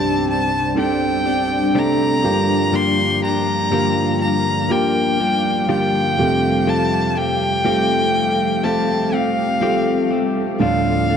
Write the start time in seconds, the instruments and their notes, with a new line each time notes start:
Already playing: grand piano C2 G2 C4 D4 G4, clean electric guitar C3 G3 C4 D4 G4, ambient pad G3 D4 C5 D5, violin A5
0.30 violin A5
0.75 clean electric guitar G3 C4 D4 G4, grand piano C4 D4 A4
0.80 violin G5
1.26 clean electric guitar C4 D4 G4
1.74 clean electric guitar C3 G3 C4 D4 G4, grand piano A3 C4 D4, violin A#5
2.23 grand piano G2 D3 A#3 F4 G4, clean electric guitar F3 A#3 D4 G4, ambient pad A#4 F5
2.72 clean electric guitar G2 D3 F3 A#3 D4 G4, violin C6
3.22 clean electric guitar F3 A#3 D4 G4, violin A#5
3.71 clean electric guitar G2 D3 F3 A#3 D4 G4, grand piano A#3 F4 G4
4.21 violin A#5
4.69 clean electric guitar F3 A#3 D4 G4, grand piano A#3 F4 G4, violin G5
5.19 clean electric guitar F3 A#3 D4 G4
5.67 clean electric guitar G2 D3 F3 A#3 D4 G4, grand piano A#3 F4 G4, violin G5
6.17 grand piano F2 C3 A3 F4 G4, clean electric guitar A3 C4 G4, ambient pad C4 A4
6.67 clean electric guitar F3 A3 C4 G4, violin A5
7.10 violin A5
7.15 clean electric guitar A3 C4 G4, violin G5
7.64 clean electric guitar F3 A3 C4 G4, grand piano A3 F4 G4
8.63 clean electric guitar F3 A3 C4 G4, grand piano A3 F4 A4, violin A5
9.12 clean electric guitar A3 C4 G4, violin F5
9.60 clean electric guitar F3 A3 C4 G4, grand piano A3 F4 G4
10.11 clean electric guitar A3 C4 G4
10.59 grand piano D2 A2 D4 F4, ambient pad D3 D4 D5, clean electric guitar D3 F3 A3 D4, violin F5
11.10 clean electric guitar A3 D4